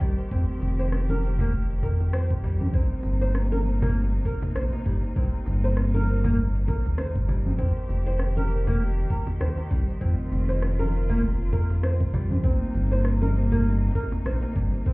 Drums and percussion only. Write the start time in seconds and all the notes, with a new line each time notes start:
0.01 kick, shaker
0.19 shaker
0.31 kick, shaker
0.62 cajon slap, shaker
0.80 shaker
0.92 cross-stick, shaker
1.10 low conga
1.23 shaker
1.39 cajon bass, shaker
1.53 kick, shaker
1.83 kick, cajon bass, shaker
2.00 cajon slap, shaker
2.13 cross-stick, shaker
2.31 kick
2.44 kick, cajon bass, shaker
2.61 low conga, shaker
2.74 kick, shaker
3.03 cajon slap, shaker
3.22 shaker
3.35 cross-stick, shaker
3.52 low conga
3.65 shaker
3.82 cajon bass, shaker
3.95 shaker
4.25 kick, shaker
4.42 cajon bass, cajon slap, shaker
4.56 cross-stick, shaker
4.73 cajon slap
4.86 kick, shaker
5.04 shaker
5.16 kick, shaker
5.46 cajon slap, shaker
5.64 shaker
5.77 cross-stick, shaker
5.94 low conga
6.07 shaker
6.24 cajon bass, shaker
6.38 kick, shaker
6.68 kick, cajon bass, shaker
6.85 cajon slap, shaker
6.98 cross-stick, shaker
7.16 kick
7.28 kick, cajon bass, shaker
7.46 low conga, shaker
7.59 kick, shaker
7.89 cajon slap, shaker
8.07 shaker
8.19 cross-stick, shaker
8.37 low conga
8.50 shaker
8.68 cajon bass, shaker
8.81 shaker
9.10 kick, shaker
9.27 cajon bass, cajon slap, shaker
9.41 cross-stick, shaker
9.57 cajon slap
9.71 kick, shaker
9.89 shaker
10.01 kick, shaker
10.32 cajon slap, shaker
10.50 shaker
10.62 cross-stick, shaker
10.80 low conga
10.93 shaker
11.09 cajon bass, shaker
11.23 kick, shaker
11.52 cajon bass, kick, shaker
11.70 cajon slap, shaker
11.83 cross-stick, shaker
12.01 kick
12.13 kick, cajon bass, shaker
12.31 low conga, shaker
12.44 kick, shaker
12.74 cajon slap, shaker
12.92 shaker
13.05 cross-stick, shaker
13.22 low conga
13.35 shaker
13.52 cajon bass, shaker
13.66 shaker
13.95 kick, shaker
14.12 cajon bass, cajon slap, shaker
14.26 cross-stick, shaker
14.42 cajon slap
14.56 kick, shaker
14.74 shaker
14.86 kick, shaker